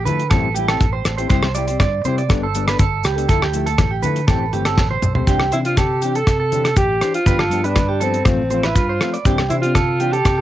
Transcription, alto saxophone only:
5.53 5.59 E4 medium
5.66 5.77 F4 medium
5.79 6.18 G4 medium
6.16 6.77 A4 loud
6.77 7.12 G4 loud
7.15 7.67 F4 medium
7.65 8.04 D4 medium
8.02 8.66 C4 medium
8.65 8.77 E4 medium
8.75 9.13 F4 medium
9.50 9.56 E4 medium
9.62 10.14 F4 medium
10.12 10.41 G4 loud

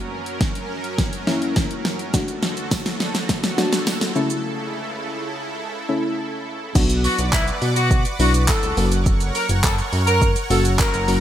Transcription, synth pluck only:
0.00 0.46 A#3 medium
0.00 0.46 C#4 medium
0.00 0.47 F#4 loud
1.27 1.95 A#3 medium
1.27 1.95 C#4 medium
1.27 1.95 E4 loud
2.14 3.04 A3 medium
2.14 3.04 D4 medium
2.14 3.04 F#4 loud
3.58 4.14 A3 medium
3.58 4.16 D4 medium
3.58 4.16 F#4 loud
4.15 5.08 C#3 medium
4.15 5.08 A3 medium
4.15 5.08 C#4 medium
4.15 5.08 E4 loud
5.89 6.56 C#3 medium
5.89 6.56 A3 medium
5.89 6.56 C#4 medium
5.89 6.56 E4 loud
6.75 7.65 F#3 medium
6.75 7.65 B3 medium
6.75 7.65 D4 medium
6.75 7.65 F#4 loud
8.19 8.64 F#3 medium
8.19 8.64 B3 medium
8.19 8.65 D4 medium
8.19 8.65 E4 medium
8.77 9.70 F#3 medium
8.77 9.70 A#3 medium
8.77 9.70 C#4 medium
8.77 9.70 F#4 medium
10.50 10.95 F#3 medium
10.50 10.95 A#3 medium
10.50 10.95 C#4 medium
10.50 10.95 F#4 medium
11.08 11.20 F#3 medium
11.08 11.20 A#3 medium
11.08 11.20 C#4 medium
11.08 11.20 F#4 medium

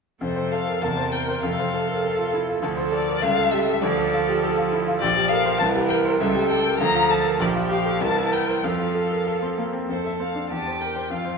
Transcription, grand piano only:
0.21 0.81 F2 medium
0.36 0.61 C5 soft
0.52 0.77 A4 soft
0.67 0.83 A#4 soft
0.82 1.42 E2 medium
0.97 1.22 C5 soft
1.12 1.37 A#4 soft
1.29 1.44 C5 soft
1.43 2.59 F2 medium
1.59 1.83 C5 medium
1.74 1.98 A4 soft
1.89 2.04 A#4 soft
2.04 2.28 A4 soft
2.19 2.42 F4 soft
2.34 2.49 E4 soft
2.49 2.63 F4 soft
2.62 3.20 D2 medium
2.77 3.01 C5 medium
2.92 3.16 A4 medium
3.08 3.22 A#4 soft
3.23 3.80 C#2 medium
3.38 3.61 A4 soft
3.53 3.76 G4 medium
3.69 3.83 A4 soft
3.83 4.97 D2 medium
3.98 4.21 A4 medium
4.13 4.36 F4 medium
4.28 4.42 G4 medium
4.44 4.66 A4 medium
4.58 4.81 F4 medium
4.73 4.87 E4 soft
4.87 5.01 F4 medium
5.02 5.59 A#1 medium
5.17 5.40 G4 medium
5.31 5.54 A#4 medium
5.46 5.60 C5 medium
5.61 6.18 C2 medium
5.76 5.99 G4 medium
5.90 6.14 A#4 medium
6.05 6.20 C5 medium
6.20 6.78 C#2 medium
6.35 6.58 G4 medium
6.50 6.74 A4 medium
6.65 6.80 A#4 medium
6.80 7.39 D2 medium
6.95 7.19 F4 medium
7.10 7.34 A4 medium
7.24 7.40 A#4 soft
7.40 7.99 A#1 medium
7.55 7.80 F4 medium
7.71 7.95 G4 medium
7.86 8.01 A4 soft
8.01 8.62 C2 medium
8.16 8.41 E4 soft
8.31 8.57 A#4 soft
8.48 8.64 C5 soft
8.64 9.86 F2 medium
8.79 9.04 F4 soft
8.95 9.20 A4 soft
9.11 9.27 A#4 soft
9.27 9.52 A4 soft
9.42 9.68 C4 soft
9.58 9.74 A#3 soft
9.73 9.89 C4 soft
9.89 10.48 F2 soft
10.04 10.29 A4 soft
10.20 10.44 C4 soft
10.35 10.50 D4 soft
10.50 11.09 E2 soft
10.66 10.90 C5 soft
10.81 11.05 A#4 soft
10.96 11.11 C5 soft
11.10 11.38 F2 soft
11.25 11.38 C5 soft

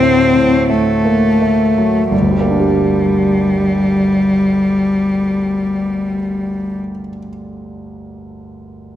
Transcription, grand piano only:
0.00 2.07 D2 soft
0.00 0.22 A2 soft
0.00 1.78 F#3 soft
0.00 0.02 A3 soft
0.00 0.56 A3 soft
0.00 1.05 A#3 soft
0.35 0.90 A2 soft
0.69 1.26 A3 soft
1.05 1.41 A#3 soft
1.42 1.99 A3 soft
1.78 2.12 F#3 soft
2.11 6.79 G1 soft
2.21 6.89 D2 soft
2.31 6.99 G3 soft
2.41 7.08 A#3 soft
2.51 7.18 D4 soft
2.60 7.27 G4 soft

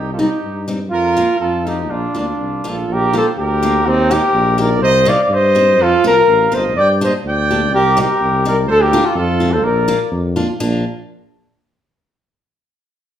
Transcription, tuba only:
0.00 0.25 C2 medium
0.42 0.93 G2 medium
0.91 1.23 F2 medium
1.40 1.91 F2 medium
1.90 2.06 A#1 medium
2.15 2.36 D2 medium
2.38 2.62 C2 medium
2.65 2.86 A#1 medium
2.88 3.20 A#1 loud
3.37 3.87 D2 loud
3.86 4.17 D#2 loud
4.34 4.82 A#1 loud
4.80 5.12 C2 loud
5.28 5.80 G2 loud
5.78 5.95 F2 loud
6.03 6.24 C2 medium
6.26 6.50 A1 loud
6.52 6.78 G1 medium
6.76 7.08 G2 loud
7.24 7.73 D2 loud
7.72 8.03 C2 loud
8.21 8.69 C2 loud
8.68 8.99 D2 loud
9.15 9.65 F2 loud
9.63 9.94 A#1 loud
10.11 10.43 F2 loud
10.61 10.84 A#1 loud

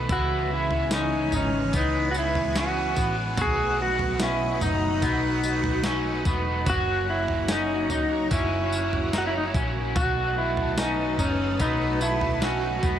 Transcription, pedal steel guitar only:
0.12 0.53 F#4 loud
0.53 0.90 E4 medium
0.94 1.35 D#4 loud
1.36 1.77 C#4 medium
1.77 2.10 D#4 medium
2.11 2.17 F#4 medium
2.19 2.59 E4 loud
2.60 3.15 F#4 loud
3.42 3.82 G#4 loud
3.82 4.23 F#4 loud
4.22 4.63 E4 loud
4.63 6.23 D#4 medium
6.70 7.10 F#4 loud
7.10 7.51 E4 loud
7.51 7.91 D#4 medium
7.92 8.32 D#4 medium
8.32 9.15 E4 medium
9.18 9.27 F#4 medium
9.27 9.36 E4 medium
9.37 9.46 D#4 medium
9.47 9.56 E4 medium
9.97 10.38 F#4 loud
10.38 10.78 E4 medium
10.79 11.21 D#4 medium
11.20 11.62 C#4 medium
11.61 12.02 D#4 loud
12.02 12.43 E4 loud
12.43 12.99 F#4 medium

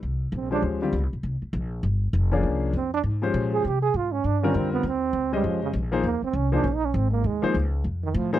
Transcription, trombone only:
0.36 0.52 C4 medium
0.53 0.63 D4 loud
2.77 2.92 C4 medium
2.94 3.00 D4 loud
3.53 3.68 G#4 loud
3.67 3.81 G4 medium
3.82 3.98 G#4 loud
3.97 4.13 F4 medium
4.12 4.27 C#4 medium
4.26 4.44 D4 medium
4.43 4.58 C#4 medium
4.56 4.72 C4 medium
4.72 4.89 B3 medium
4.87 5.33 C4 medium
5.34 5.48 G3 medium
5.47 5.62 F3 medium
5.63 5.70 C#3 medium
6.05 6.22 A#3 medium
6.24 6.37 C4 medium
6.35 6.54 C#4 medium
6.53 6.67 D4 loud
6.65 6.77 C#4 medium
6.75 6.87 D#4 loud
6.85 6.97 C#4 medium
6.96 7.11 C4 medium
7.11 7.28 A#3 medium
7.26 7.55 G#3 medium
8.03 8.18 D#3 medium
8.16 8.34 F3 medium
8.34 8.39 G3 medium

